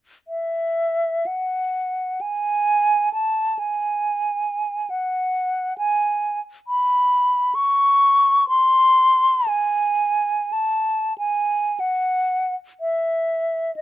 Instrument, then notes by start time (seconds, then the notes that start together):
flute
0.28 E5
1.26 F#5
2.21 G#5
3.14 A5
3.59 G#5
4.90 F#5
5.78 G#5
6.68 B5
7.55 C#6
8.49 C6
9.48 G#5
10.53 A5
11.18 G#5
11.80 F#5
12.80 E5
13.76 D#5